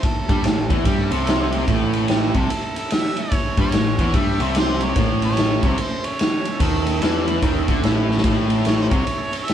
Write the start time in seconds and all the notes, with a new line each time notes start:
Already playing: A3 E4 A4 C#5
0.03 A4, kick, ride
0.29 G2 G3, kick, ride
0.43 A1 A2, snare, ride
0.70 E2 E3, kick, ride
0.85 G2 G3, kick, ride
1.11 C2 C3, ride
1.27 snare, ride
1.52 ride
1.68 A1 A2 A3 E4 A4 C#5, kick, ride
1.93 ride
2.08 G4, snare, ride
2.34 C2 C3 A4, kick, ride
2.50 muted distorted electric guitar stroke, ride
2.76 A4, ride
2.90 E5, snare, ride
3.17 C#5, ride
3.32 kick, ride
3.57 G2 G3 C#5, kick, ride
3.66 snare
3.72 A1 A2, snare, ride
3.98 E2 E3, kick, ride
4.14 G2 G3 E5, kick, ride
4.40 C2 C3, ride
4.55 C5, snare, ride
4.81 C#5, ride
4.96 A1 A2 A#3 D4 F4 A#4, kick, ride
5.10 A3 C#4 A4 E5
5.22 C#5, ride
5.31 snare
5.37 snare, ride
5.63 C2 C3, kick, ride
5.78 C5, muted picked electric bass stroke, muted distorted electric guitar stroke, ride
6.04 C#5, ride
6.19 snare, ride
6.45 ride
6.60 D#2 D#3 A4, kick, ride
6.87 ride
7.02 E2 E3, snare, ride
7.28 ride
7.42 D#2 D#3, kick, ride
7.68 D2 D3, kick, ride
7.83 A1 A2, snare, ride
8.11 snare
8.18 snare
8.24 A1 A2 A3 E4 A4, kick, ride
8.50 ride
8.65 C#5, snare, ride
8.81 C5
8.88 C2 C3 C#5, kick, ride
9.07 muted distorted electric guitar stroke, muted picked electric bass stroke, ride
9.33 ride
9.45 E5, ride
9.50 snare